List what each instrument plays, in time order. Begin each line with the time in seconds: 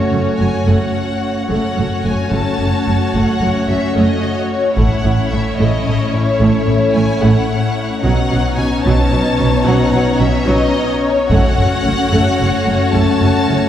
Already playing: viola section A3 C#4, french horn section A3 C#4, violin section F#4 C#5
0.12 double bass section F#1, cello section F#2, viola section A3
0.39 double bass section F#1, cello section F#2, viola section A3, violin section G#5
0.66 double bass section F#1, cello section F#2, viola section A3, violin section F#5
1.48 double bass section F#1, cello section F#2, french horn section A3 C#4, viola section A3 C#4, violin section F#4 C#5 F#5
1.76 double bass section F#1, cello section F#2, viola section A3
2.04 double bass section F#1, cello section F#2, viola section A3, violin section G#5
2.31 double bass section F#1, cello section F#2, viola section A3, violin section A5
2.58 double bass section F#1, cello section F#2, viola section A3
2.86 double bass section F#1, cello section F#2, viola section A3
3.13 double bass section F#1, cello section F#2, viola section A3, violin section F#5
3.40 double bass section F#1, cello section F#2, viola section A3
3.68 double bass section F#1, cello section F#2, viola section A3, violin section E5
3.95 double bass section F#1, cello section F#2, viola section A3, violin section D#5
4.51 violin section C#5
4.76 double bass section A1, cello section A2, viola section A3 C#4, french horn section A3 C#4, violin section E4 C#5 F#5, taiko
5.04 double bass section A1, cello section A2, viola section A3
5.31 double bass section A1, cello section A2, viola section A3, violin section E5
5.56 double bass section A1, cello section A2, viola section A3, violin section D#5
5.86 double bass section A1, cello section A2, viola section A3
6.11 double bass section A1, cello section A2, viola section A3, violin section C#5
6.40 double bass section A1, cello section A2, viola section A3
6.67 double bass section A1, cello section A2, viola section A3
6.93 double bass section A1, cello section A2, viola section A3, violin section G#5
7.21 double bass section A1, cello section A2, viola section A3, violin section F#5
8.02 double bass section B1, cello section B2, viola section F#3 C#4, french horn section B3 C#4, violin section D#4 C#5 F#5
8.30 double bass section B1, cello section B2, viola section F#3
8.57 double bass section B1, cello section B2, viola section F#3, violin section G#5
8.82 double bass section B1, cello section B2, viola section F#3, violin section A5
9.12 double bass section B1, cello section B2, viola section F#3
9.38 double bass section B1, cello section B2, viola section F#3
9.65 double bass section B1, cello section B2, viola section F#3, violin section F#5
9.92 double bass section B1, cello section B2, viola section F#3
10.19 double bass section B1, cello section B2, viola section F#3, violin section E5
10.47 double bass section B1, cello section B2, viola section F#3, violin section D#5
11.02 violin section C#5
11.30 double bass section F#1, cello section F#2, viola section A3 C#4, french horn section A3 C#4, violin section F#4 C#5 F#5, taiko
11.57 double bass section F#1, cello section F#2, viola section A3
11.83 double bass section F#1, cello section F#2, viola section A3
12.10 double bass section F#1, cello section F#2, viola section A3
12.38 double bass section F#1, cello section F#2, viola section A3
12.64 double bass section F#1, cello section F#2, viola section A3
12.92 double bass section F#1, cello section F#2, viola section A3, violin section A5
13.19 double bass section F#1, cello section F#2, viola section A3
13.47 double bass section F#1, cello section F#2, viola section A3